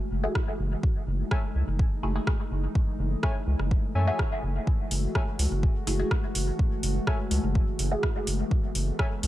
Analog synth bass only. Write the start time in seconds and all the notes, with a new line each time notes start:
0.11 F#1
0.59 F#1
1.07 F#1
1.55 C#2
1.67 F#1
2.03 F#1
2.51 F#1
2.99 F#1
3.47 C#2
3.59 F#1
3.95 F#2
4.43 F#1
4.91 F#1
5.39 C#2
5.51 F#1
5.87 F#1
6.35 F#1
6.83 F#1
7.31 C#2
7.43 F#1
7.79 F#1
8.27 F#1
8.75 F#1
9.23 C#2